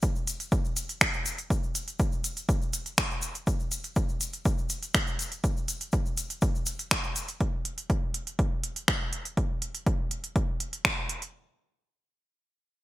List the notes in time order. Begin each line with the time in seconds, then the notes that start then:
0.02 kick, closed hi-hat, shaker
0.15 shaker
0.27 closed hi-hat, shaker
0.40 closed hi-hat, shaker
0.52 kick, closed hi-hat, shaker
0.65 shaker
0.77 closed hi-hat, shaker
0.89 closed hi-hat, shaker
1.01 finger snap, kick, shaker
1.13 shaker
1.26 closed hi-hat, shaker
1.38 closed hi-hat, shaker
1.50 kick, closed hi-hat, shaker
1.63 shaker
1.75 closed hi-hat, shaker
1.88 closed hi-hat, shaker
1.99 kick, closed hi-hat, shaker
2.12 shaker
2.24 closed hi-hat, shaker
2.37 closed hi-hat, shaker
2.49 kick, closed hi-hat, shaker
2.62 shaker
2.73 closed hi-hat, shaker
2.86 closed hi-hat, shaker
2.98 finger snap, kick, shaker
3.11 shaker
3.22 closed hi-hat, shaker
3.35 closed hi-hat, shaker
3.47 kick, closed hi-hat, shaker
3.60 shaker
3.72 closed hi-hat, shaker
3.84 closed hi-hat, shaker
3.96 kick, closed hi-hat, shaker
4.09 shaker
4.21 closed hi-hat, shaker
4.33 closed hi-hat, shaker
4.45 kick, closed hi-hat, shaker
4.58 shaker
4.70 closed hi-hat, shaker
4.83 closed hi-hat, shaker
4.94 finger snap, kick, closed hi-hat, shaker
5.07 shaker
5.19 closed hi-hat, shaker
5.32 closed hi-hat, shaker
5.44 kick, closed hi-hat, shaker
5.57 shaker
5.68 closed hi-hat, shaker
5.81 closed hi-hat, shaker
5.92 kick, closed hi-hat, shaker
6.06 shaker
6.17 closed hi-hat, shaker
6.30 closed hi-hat, shaker
6.42 kick, closed hi-hat, shaker
6.55 shaker
6.66 closed hi-hat, shaker
6.79 closed hi-hat, shaker
6.91 finger snap, kick, shaker
7.03 shaker
7.16 closed hi-hat, shaker
7.28 closed hi-hat, shaker
7.40 kick, closed hi-hat
7.65 closed hi-hat
7.78 closed hi-hat
7.90 kick, closed hi-hat
8.14 closed hi-hat
8.27 closed hi-hat
8.39 kick, closed hi-hat
8.64 closed hi-hat
8.76 closed hi-hat
8.88 finger snap, kick, closed hi-hat
9.13 closed hi-hat
9.25 closed hi-hat
9.37 kick, closed hi-hat
9.62 closed hi-hat
9.75 closed hi-hat
9.87 kick, closed hi-hat
10.11 closed hi-hat
10.24 closed hi-hat
10.36 kick, closed hi-hat
10.60 closed hi-hat
10.73 closed hi-hat
10.85 finger snap, kick, closed hi-hat
11.09 closed hi-hat
11.22 closed hi-hat